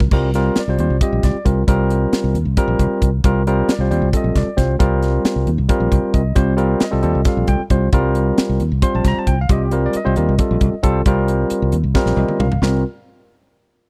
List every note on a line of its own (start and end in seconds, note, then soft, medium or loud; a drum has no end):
0.00 0.10 C2 medium
0.00 kick medium
0.11 0.49 C2 medium
0.11 0.29 G3 medium
0.11 0.29 C4 medium
0.11 0.30 F4 medium
0.11 0.30 A#4 medium
0.11 kick medium
0.11 crash medium
0.34 0.60 G3 medium
0.34 0.61 C4 medium
0.34 0.60 F4 medium
0.34 0.60 A#4 medium
0.34 snare soft
0.34 closed hi-hat medium
0.56 muted fingered electric bass stroke soft
0.56 snare medium
0.56 closed hi-hat medium
0.60 0.99 D5 medium
0.68 0.77 C2 medium
0.68 0.76 G3 medium
0.68 0.77 C4 medium
0.68 0.77 F4 medium
0.68 0.77 C5 medium
0.79 0.88 D#2 medium
0.79 0.96 G3 medium
0.79 0.96 C4 medium
0.79 0.97 F4 medium
0.79 0.96 C5 medium
0.79 closed hi-hat medium
0.90 0.99 C2 medium
1.01 1.35 G3 medium
1.01 1.36 C4 medium
1.01 1.36 F4 medium
1.01 1.36 G4 medium
1.01 1.23 D#5 medium
1.01 kick loud
1.01 closed hi-hat medium
1.12 1.22 A#1 medium
1.23 1.33 C2 medium
1.23 1.45 D5 medium
1.23 kick medium
1.23 snare soft
1.23 closed hi-hat medium
1.45 1.64 C2 medium
1.45 1.62 G3 medium
1.45 1.63 C4 medium
1.45 1.63 F4 medium
1.45 1.63 A#4 medium
1.45 kick medium
1.45 closed hi-hat medium
1.67 2.05 C2 loud
1.67 2.36 G3 medium
1.67 2.37 C4 medium
1.67 2.37 F4 medium
1.67 2.37 A#4 loud
1.67 kick loud
1.67 closed hi-hat medium
1.90 closed hi-hat medium
2.13 muted fingered electric bass stroke soft
2.13 snare medium
2.13 closed hi-hat medium
2.24 2.33 C2 medium
2.34 2.44 D#2 medium
2.34 closed hi-hat medium
2.45 2.55 C2 medium
2.57 3.09 G3 medium
2.57 3.09 C4 medium
2.57 3.09 F4 medium
2.57 3.09 A#4 loud
2.57 kick loud
2.57 closed hi-hat medium
2.68 2.77 A#1 medium
2.79 2.88 C2 medium
2.79 kick medium
2.79 closed hi-hat medium
3.02 3.20 C2 medium
3.02 kick medium
3.02 closed hi-hat medium
3.24 3.61 C2 medium
3.24 3.41 G3 medium
3.24 3.42 C4 medium
3.24 3.42 F4 medium
3.24 3.42 A#4 loud
3.24 kick loud
3.24 closed hi-hat medium
3.47 3.73 G3 medium
3.47 3.73 C4 medium
3.47 3.73 F4 medium
3.47 3.73 A#4 loud
3.47 closed hi-hat medium
3.68 muted fingered electric bass stroke soft
3.68 snare loud
3.68 closed hi-hat medium
3.72 4.12 D5 medium
3.79 3.88 C2 medium
3.79 3.89 G3 medium
3.79 3.89 C4 medium
3.79 3.89 F4 medium
3.79 3.89 C5 medium
3.91 4.00 D#2 medium
3.91 4.08 G3 medium
3.91 4.08 C4 medium
3.91 4.08 F4 medium
3.91 4.08 C5 medium
3.91 closed hi-hat medium
4.02 4.11 C2 medium
4.13 4.48 G3 medium
4.13 4.48 C4 medium
4.13 4.48 F4 medium
4.13 4.48 A4 medium
4.13 4.37 D#5 medium
4.13 kick loud
4.13 closed hi-hat medium
4.24 4.34 A#1 medium
4.35 4.45 C2 medium
4.35 4.58 D5 medium
4.35 kick medium
4.35 snare soft
4.35 closed hi-hat medium
4.57 4.76 C2 medium
4.57 4.75 G3 medium
4.57 4.75 C4 medium
4.57 4.75 F4 medium
4.57 4.75 C5 medium
4.57 kick medium
4.57 snare soft
4.57 closed hi-hat medium
4.79 5.17 C2 medium
4.79 5.49 G3 medium
4.79 5.49 C4 medium
4.79 5.49 F4 medium
4.79 5.49 A#4 loud
4.79 kick loud
4.79 closed hi-hat medium
5.03 snare soft
5.03 closed hi-hat medium
5.24 muted fingered electric bass stroke soft
5.24 snare loud
5.24 closed hi-hat medium
5.36 5.45 C2 medium
5.47 5.56 D#2 medium
5.47 closed hi-hat medium
5.58 5.68 C2 medium
5.69 6.21 G3 medium
5.69 6.21 C4 medium
5.69 6.21 F4 medium
5.69 6.21 A#4 loud
5.69 kick loud
5.69 closed hi-hat medium
5.80 5.90 A#1 medium
5.91 6.01 C2 medium
5.91 6.12 G5 medium
5.91 kick medium
5.91 closed hi-hat medium
6.14 6.33 C2 medium
6.14 6.35 D#5 medium
6.14 kick medium
6.14 closed hi-hat medium
6.35 6.74 C2 medium
6.35 6.53 G3 medium
6.35 6.54 C4 medium
6.35 6.54 F4 medium
6.35 6.54 C5 medium
6.35 kick loud
6.35 closed hi-hat medium
6.57 6.84 G3 medium
6.57 6.84 C4 medium
6.57 6.84 F4 medium
6.57 6.84 A#4 loud
6.57 closed hi-hat medium
6.80 7.24 D#5 medium
6.80 muted fingered electric bass stroke soft
6.80 snare loud
6.80 closed hi-hat medium
6.91 7.02 C2 medium
6.91 7.00 G3 medium
6.91 7.01 C4 medium
6.91 7.01 F4 medium
6.91 7.01 A4 medium
7.02 7.13 D#2 medium
7.02 7.20 G3 medium
7.02 7.20 C4 medium
7.02 7.21 F4 medium
7.02 7.21 A4 medium
7.02 closed hi-hat medium
7.15 7.24 C2 medium
7.25 7.60 G3 medium
7.25 7.60 C4 medium
7.25 7.60 F4 medium
7.25 7.60 A4 medium
7.25 7.49 F5 medium
7.25 kick loud
7.25 snare soft
7.25 closed hi-hat medium
7.37 7.46 A#1 medium
7.47 7.58 C2 medium
7.47 7.62 G5 medium
7.47 kick medium
7.47 closed hi-hat medium
7.60 muted fingered electric bass stroke soft
7.70 7.89 C2 medium
7.70 7.88 G3 medium
7.70 7.88 C4 medium
7.70 7.88 F4 medium
7.70 7.88 C5 medium
7.70 kick medium
7.70 closed hi-hat medium
7.93 8.30 C2 loud
7.93 8.62 G3 medium
7.93 8.62 C4 medium
7.93 8.62 F4 medium
7.93 8.62 A#4 loud
7.93 kick loud
7.93 closed hi-hat medium
8.15 closed hi-hat medium
8.38 muted fingered electric bass stroke soft
8.38 snare loud
8.38 closed hi-hat medium
8.49 8.59 C2 medium
8.60 8.70 D#2 medium
8.60 closed hi-hat medium
8.72 8.81 C2 medium
8.82 9.34 G3 medium
8.82 9.34 C4 medium
8.82 9.34 F4 medium
8.82 9.34 C5 medium
8.82 8.93 C6 medium
8.82 kick loud
8.82 closed hi-hat medium
8.95 9.04 A#1 medium
8.95 9.06 A5 medium
9.04 9.14 C2 medium
9.04 9.17 A#5 loud
9.04 kick medium
9.04 snare soft
9.04 closed hi-hat medium
9.18 9.28 A5 medium
9.18 muted fingered electric bass stroke soft
9.27 9.46 C2 medium
9.27 9.38 G5 medium
9.27 kick medium
9.27 closed hi-hat medium
9.41 9.51 F5 medium
9.49 9.87 C2 medium
9.49 9.67 G3 medium
9.49 9.67 C4 medium
9.49 9.67 F4 medium
9.49 9.63 G4 medium
9.49 9.62 D#5 medium
9.49 kick loud
9.49 closed hi-hat medium
9.65 9.74 G4 medium
9.71 9.98 G3 medium
9.71 9.98 C4 medium
9.71 9.98 F4 medium
9.71 9.98 A#4 medium
9.71 closed hi-hat medium
9.86 9.95 D5 medium
9.93 10.81 D#5 medium
9.93 muted fingered electric bass stroke soft
9.93 closed hi-hat medium
10.04 10.15 C2 medium
10.04 10.14 G3 medium
10.04 10.14 C4 medium
10.04 10.14 F4 medium
10.04 10.14 C5 medium
10.16 10.26 D#2 medium
10.16 10.34 G3 medium
10.16 10.34 C4 medium
10.16 10.34 F4 medium
10.16 10.34 A#4 medium
10.16 closed hi-hat medium
10.29 10.38 C2 medium
10.38 10.73 G3 medium
10.38 10.73 C4 medium
10.38 10.74 F4 medium
10.38 10.74 A4 medium
10.38 kick loud
10.38 closed hi-hat medium
10.51 10.60 A#1 medium
10.61 10.70 C2 medium
10.61 kick medium
10.61 closed hi-hat medium
10.74 muted fingered electric bass stroke soft
10.83 11.02 C2 medium
10.83 11.00 G3 loud
10.83 11.01 C4 medium
10.83 11.01 F4 medium
10.83 11.01 A4 loud
10.83 kick medium
10.83 closed hi-hat medium
11.06 11.43 C2 loud
11.06 11.75 G3 medium
11.06 11.75 C4 medium
11.06 11.75 F4 medium
11.06 11.76 A#4 loud
11.06 kick loud
11.06 closed hi-hat medium
11.28 closed hi-hat medium
11.50 muted fingered electric bass stroke soft
11.50 closed hi-hat medium
11.62 11.71 C2 medium
11.72 11.82 D#2 medium
11.72 closed hi-hat medium
11.84 11.93 C2 medium
11.95 12.47 G3 loud
11.95 12.47 C4 medium
11.95 12.47 F4 medium
11.95 12.47 A#4 loud
11.95 kick loud
11.95 snare medium
12.06 12.15 A#1 medium
12.06 snare medium
12.17 12.26 C2 medium
12.17 12.38 D#5 medium
12.17 high tom medium
12.28 mid tom medium
12.39 12.58 C2 medium
12.39 12.61 F5 medium
12.39 mid tom loud
12.52 floor tom medium
12.62 12.83 C2 medium
12.62 12.83 G3 medium
12.62 12.83 C4 medium
12.62 12.83 F4 medium
12.62 12.83 A#4 medium
12.62 snare loud